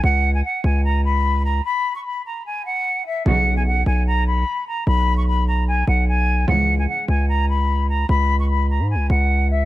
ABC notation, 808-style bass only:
X:1
M:4/4
L:1/16
Q:1/4=149
K:C#dor
V:1 name="808-style bass" clef=bass
C,,4 z2 C,,8- C,,2 | z16 | B,,,6 B,,,6 z4 | B,,,8- B,,,2 B,,,6 |
C,,4 z2 C,,8- C,,2 | C,,6- C,, G,,3/2 C,,3/2 C,,6 |]